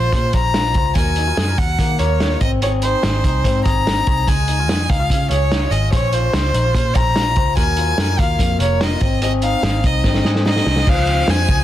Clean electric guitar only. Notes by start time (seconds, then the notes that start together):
Already playing: C#4 F4 C5
0.13 C#4
0.34 C5
0.55 F4
0.76 C5
0.97 F#3 A#4
1.18 D#4
1.27 F4
1.38 G#4
1.48 A#4
1.80 A#3
2.00 A#4
2.21 F4
2.41 C4
2.62 C4 G#4
2.84 D#4
3.04 G#4
3.25 D#4
3.45 C4
3.65 G#4
3.87 D#4
4.07 G#4
4.28 G#3 G#4
4.49 D#4
4.59 F4
4.69 G#4
4.90 D#4
5.00 F4
5.11 C#4
5.32 G#4
5.52 D#4
5.62 F4
5.72 G#4
5.92 C#4 C5
6.13 F4
6.34 C5
6.54 D#4
6.65 F4
6.75 C#4
6.95 C5
7.17 F4
7.37 C5
7.57 F#3 A#4
7.78 F4
7.99 A#4
8.19 F4
8.40 A#3
8.61 A#4
8.81 F4
9.01 C4
9.22 C4 G#4
9.43 D#4
9.63 G#4
9.85 D#4
10.05 C4
10.26 G#4
10.46 D#4
10.67 G#4
10.88 F3 G#4
11.09 C4
11.50 G#4